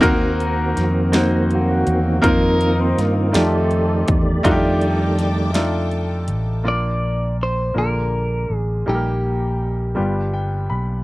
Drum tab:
HH |xxxxxx|xxxxxx|xxxxxx|------|
SD |--oo--|--oo--|--oo--|------|
BD |o-----|o----o|o-----|------|

HH |------|
SD |------|
BD |------|